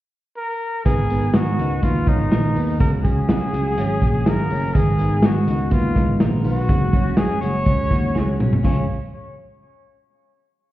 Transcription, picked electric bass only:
0.86 1.27 G#1 medium
1.34 1.55 G#2 medium
1.58 1.79 C#2 medium
1.83 2.04 D#2 medium
2.07 2.32 G#1 medium
2.32 2.52 A#1 medium
2.56 2.80 D#2 medium
2.80 3.31 C#2 medium
3.29 3.50 C#3 medium
3.53 3.74 C#2 medium
3.78 3.99 G#1 medium
4.02 4.22 A#1 medium
4.26 4.47 G#1 medium
4.51 4.71 F#1 medium
4.75 5.25 G#1 medium
5.23 5.44 G#2 loud
5.47 5.68 C#2 medium
5.71 5.92 D#2 medium
5.96 6.17 G#1 medium
6.21 6.41 A#1 medium
6.45 6.66 B1 loud
6.69 7.11 F#1 loud
7.18 7.39 F#2 loud
7.42 7.63 F#1 medium
7.66 7.87 C#2 medium
7.91 8.12 D#2 medium
8.15 8.36 C#2 medium
8.40 8.60 B1 medium
8.64 8.87 C#2 medium

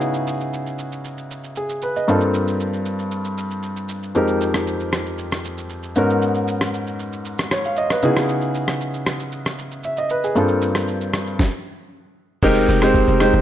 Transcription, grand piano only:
0.00 1.78 C#3 medium
0.00 1.78 B3 medium
0.00 1.79 D#4 medium
0.00 1.79 E4 medium
0.00 1.79 F#4 medium
0.00 1.54 G#4 medium
1.57 1.81 G#4 medium
1.83 1.96 B4 medium
1.97 2.21 D#5 medium
2.08 4.11 G2 medium
2.08 4.11 A#3 medium
2.08 4.11 C4 medium
2.08 4.12 D4 medium
2.08 4.12 F4 medium
2.08 4.12 A4 medium
4.15 5.92 F2 medium
4.15 5.93 G#3 medium
4.15 5.93 C4 medium
4.15 5.93 D#4 medium
4.15 5.93 G4 medium
4.15 5.94 A#4 medium
5.96 7.99 G#2 medium
5.96 7.99 B3 medium
5.96 7.99 C#4 medium
5.96 8.00 D#4 medium
5.96 8.00 F#4 medium
5.96 7.49 A#4 medium
7.52 7.65 C#5 medium
7.66 7.77 F5 medium
7.78 7.90 D#5 medium
7.91 8.16 B4 medium
8.03 10.06 C#3 medium
8.03 10.06 B3 medium
8.03 10.06 D#4 medium
8.03 10.06 E4 medium
8.03 10.07 F#4 medium
8.03 9.81 G#4 medium
9.85 9.97 E5 medium
9.98 10.10 D#5 medium
10.11 10.23 B4 medium
10.24 10.48 G#4 medium
10.35 11.37 G2 medium
10.35 11.37 A#3 medium
10.35 11.37 C4 medium
10.35 11.38 D4 medium
10.35 11.38 F4 medium
10.35 11.38 A4 medium
12.43 12.74 G#3 loud
12.43 12.74 C4 loud
12.43 12.74 D#4 loud
12.43 12.74 G4 loud
12.43 12.75 A#4 loud
12.82 13.13 G#3 medium
12.82 13.13 C4 medium
12.82 13.13 D#4 medium
12.82 13.13 G4 medium
12.82 13.13 C5 loud
13.20 13.41 G#3 medium
13.20 13.41 C4 medium
13.20 13.41 D#4 medium
13.20 13.41 G4 medium
13.20 13.41 C5 medium

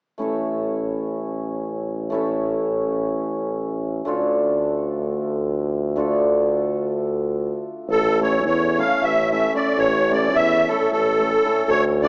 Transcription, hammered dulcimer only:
0.18 2.09 A3 medium
0.18 2.11 C#4 medium
0.18 2.12 E4 medium
0.18 2.14 A4 medium
2.10 4.05 A3 medium
2.10 4.12 C#4 medium
2.10 4.13 E4 medium
2.14 4.08 A4 medium
4.05 5.95 A3 medium
4.05 5.96 D4 medium
4.05 5.97 F4 medium
4.05 5.99 A4 medium
5.96 8.20 A3 medium
5.96 8.27 D4 medium
5.96 8.28 F4 medium
5.96 8.21 A4 medium
8.20 8.40 A3 medium
8.20 8.41 C#4 medium
8.20 8.41 E4 medium
8.20 8.41 A4 medium
8.77 8.98 A3 medium
8.77 8.98 C#4 medium
8.77 8.98 E4 medium
8.77 8.99 A4 medium
9.31 9.50 A3 soft
9.31 9.50 C#4 soft
9.31 9.50 E4 soft
9.31 9.51 A4 medium
9.53 9.73 A3 medium
9.53 9.74 C#4 medium
9.53 9.74 E4 soft
9.53 9.74 A4 medium
10.10 10.30 A3 medium
10.10 10.30 C#4 soft
10.10 10.31 E4 medium
10.10 10.31 A4 medium
10.68 10.88 A3 medium
10.68 10.88 C#4 medium
10.68 10.89 E4 medium
10.68 10.89 A4 medium
11.19 11.39 A3 soft
11.19 11.39 C#4 soft
11.19 11.40 E4 soft
11.19 11.40 A4 medium
11.45 11.64 A3 medium
11.45 11.64 C#4 soft
11.45 11.64 E4 medium
11.45 11.64 A4 medium
12.02 12.08 A3 medium
12.02 12.08 D4 medium
12.02 12.08 F4 medium
12.02 12.08 A4 medium

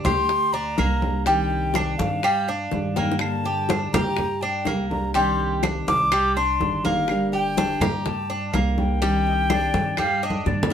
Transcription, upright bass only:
0.05 0.74 D2 medium
0.78 1.93 C2 medium
1.99 2.68 G2 medium
2.72 3.87 G2 medium
3.94 4.63 G2 medium
4.67 5.81 C2 medium
5.88 6.56 C2 medium
6.60 7.75 G1 medium
7.80 8.49 G2 medium
8.54 9.68 C2 medium
9.74 10.43 G2 medium
10.46 10.73 G2 medium

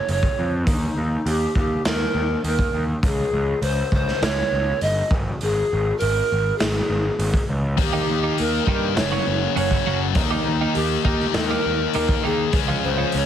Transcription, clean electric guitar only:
7.93 8.13 D#3 medium
7.93 8.13 A#3 medium
7.93 8.13 D#4 medium
7.93 8.13 G4 medium
8.23 8.43 D#3 medium
8.23 8.43 A#3 medium
8.23 8.43 D#4 medium
8.23 8.43 G4 medium
8.68 8.87 D#3 medium
8.68 8.87 A#3 medium
8.68 8.88 D#4 medium
8.68 8.88 G4 medium
8.97 muted clean electric guitar stroke soft
9.12 9.25 F#3 medium
9.12 9.26 A#3 medium
9.12 9.26 C#4 medium
9.12 9.26 F#4 medium
9.27 muted clean electric guitar stroke soft
9.56 9.76 F#3 medium
9.56 9.76 A#3 medium
9.56 9.76 C#4 medium
9.56 9.77 F#4 medium
9.86 10.06 F#3 medium
9.86 10.06 A#3 medium
9.86 10.06 C#4 medium
9.86 10.06 F#4 medium
10.31 10.51 D#3 medium
10.31 10.51 A#3 medium
10.31 10.51 D#4 medium
10.31 10.50 G4 medium
10.61 10.81 D#3 medium
10.61 10.81 A#3 medium
10.61 10.80 D#4 medium
10.61 10.80 G4 medium
11.05 11.24 D#3 medium
11.05 11.25 A#3 medium
11.05 11.25 D#4 medium
11.05 11.25 G4 medium
11.36 muted clean electric guitar stroke soft
11.51 11.65 D#3 medium
11.51 11.65 A#3 medium
11.51 11.65 D#4 medium
11.51 11.65 G4 medium
11.66 muted clean electric guitar stroke soft
11.95 12.14 D#3 medium
11.95 12.14 A#3 medium
11.95 12.14 D#4 medium
11.95 12.14 G4 medium
12.23 12.43 D#3 medium
12.23 12.43 A#3 medium
12.23 12.44 D#4 medium
12.23 12.44 G4 medium
12.68 12.88 F3 medium
12.68 12.88 G#3 medium
12.68 12.88 C#4 medium
12.68 12.88 F4 medium
12.97 13.18 F3 medium
12.97 13.18 G#3 medium
12.97 13.17 C#4 medium
12.97 13.17 F4 medium

